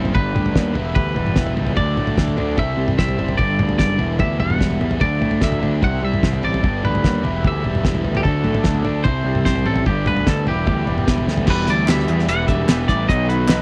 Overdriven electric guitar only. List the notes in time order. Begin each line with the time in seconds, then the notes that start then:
Already playing: C3 G3 C4 E4
0.13 G2 D3 G3 B3 D4
0.74 E3 G3 B3 E4
1.34 E3 G3 B3 E4
1.74 D3 F#3 A3 D4
2.36 D3 F#3 A3 D4
2.57 C3 G3 C4 E4
3.17 C3 G3 C4 E4
3.37 G2 D3 G3 B3 D4
3.98 E3 G3 B3 E4
4.59 E3 G3 B3 E4
5.00 D3 F#3 A3 D4
5.60 D3 F#3 A3 D4
5.81 C3 G3 C4 E4
6.41 C3 G3 C4 E4
6.62 G2 D3 G3 B3 D4
7.22 E3 G3 B3 E4
7.83 E3 G3 B3 E4
8.23 D3 F#3 A3 D4
8.84 D3 F#3 A3 D4
9.04 C3 G3 C4 E4
9.66 C3 G3 C4 E4
9.86 G2 D3 G3 B3 D4
10.47 E3 G3 B3 E4
11.07 E3 G3 B3 E4
11.48 E3 G3 B3 E4
11.87 E3 G3 B3 E4
12.08 G3 B3 E4
12.28 E3 G3 B3 E4
12.68 E3 G3 B3 E4
12.87 G3 B3 E4
13.07 B2 D#3 F#3 B3 D#4
13.47 B2 D#3 F#3 B3 D#4